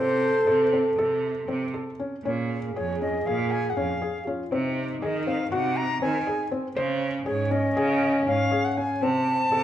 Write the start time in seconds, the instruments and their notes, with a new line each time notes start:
Already playing: cello C3, felt piano C4, french horn A4, flute C5
0.47 cello C3, felt piano A4
0.73 felt piano C4
0.98 cello C3, felt piano A4
1.48 cello C3, felt piano C4
1.74 felt piano A4
2.00 felt piano C#4
2.24 cello A#2, felt piano C#4, french horn G#4
2.75 cello F2, felt piano G#4, flute C#5
3.01 felt piano C#4, flute D#5
3.26 cello A#2, felt piano G#4, flute F5
3.51 flute G#5
3.70 flute F#5
3.76 cello F2, felt piano C#4, flute F5
4.02 felt piano G#4
4.26 felt piano C#4, french horn F4
4.51 cello C3, felt piano C4, french horn D#4
5.02 cello D#3, felt piano G#4, flute D#5
5.26 felt piano C4, flute F5
5.52 cello C3, felt piano F#4, flute F#5
5.77 flute A#5
6.01 cello D#3, felt piano C4, flute G#5
6.27 felt piano G#4
6.52 felt piano C4
6.76 cello C#3, french horn C#4, felt piano C5
7.26 cello G#2, felt piano G#4, flute C#5
7.51 felt piano C#4, flute D#5
7.76 cello C#3, felt piano G#4
8.26 cello G#2, felt piano C#4, flute F5
8.51 felt piano G#4
8.65 flute F#5
8.77 felt piano C#4, flute G#5
9.01 cello C3, french horn C4, felt piano C4, flute A5
9.52 cello C3, felt piano A4